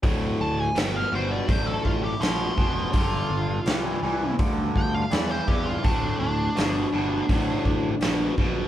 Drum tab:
HH |o-o-o-o-|o-o-o-o-|o-o-o-o-|
SD |--o---o-|--o---o-|--o---o-|
BD |o---oo-o|o---oo-o|o---oo-o|